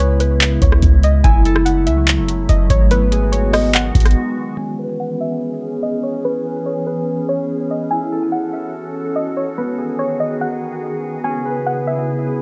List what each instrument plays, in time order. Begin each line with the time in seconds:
Already playing: 808-style bass C#2, ambient pad C#3 G#3 B3 E4, harp C#4 B4
0.00 synth pluck C#5
0.20 synth pluck B4, closed hi-hat
0.41 clap, closed hi-hat
0.62 808-style bass C#2, synth pluck C#5, kick, closed hi-hat
0.72 cross-stick
0.82 808-style bass C#2, kick, closed hi-hat
1.03 synth pluck D#5, closed hi-hat
1.24 808-style bass F#1, ambient pad F#3 A3, harp E4, synth pluck G#5, kick, closed hi-hat
1.45 harp A4, closed hi-hat
1.56 cross-stick
1.65 synth pluck F#5, closed hi-hat
1.87 808-style bass C#2, synth pluck E5, closed hi-hat
2.08 clap, closed hi-hat
2.18 808-style bass F#1
2.28 closed hi-hat
2.49 808-style bass F#1, synth pluck D#5, closed hi-hat
2.70 808-style bass G#1, synth pluck C#5, kick, closed hi-hat
2.91 ambient pad D#3 G#3 B3 F#4, harp B3, synth pluck B4, closed hi-hat
3.12 harp G#4, closed hi-hat
3.32 synth pluck C#5, closed hi-hat
3.53 synth pluck D#5, cross-stick, open hi-hat
3.75 synth pluck F#5, clap, closed hi-hat
3.95 808-style bass G#1, kick, closed hi-hat
4.00 closed hi-hat
4.05 cross-stick, closed hi-hat
4.11 closed hi-hat
4.57 ambient pad E3 B3 C#4 G#4, harp C#4, synth pluck G#5
4.79 harp B4
5.00 synth pluck F#5
5.21 synth pluck E5
5.83 synth pluck D#5
6.03 synth pluck C#5
6.24 harp C#4, synth pluck B4
6.45 harp B4
6.66 synth pluck C#5
6.87 synth pluck B4
7.29 synth pluck C#5
7.71 synth pluck D#5
7.91 harp E4, ambient pad F#4 A4, synth pluck G#5
8.12 harp A4
8.32 synth pluck F#5
8.53 synth pluck E5
9.16 synth pluck D#5
9.37 synth pluck C#5
9.58 ambient pad D#3 B3 F#4 G#4, harp B3, synth pluck B4
9.78 harp G#4
9.99 synth pluck C#5
10.20 synth pluck D#5
10.41 synth pluck F#5
11.24 ambient pad C#3 E4, harp C#4, synth pluck G#5
11.45 harp B4
11.66 synth pluck F#5
11.87 synth pluck E5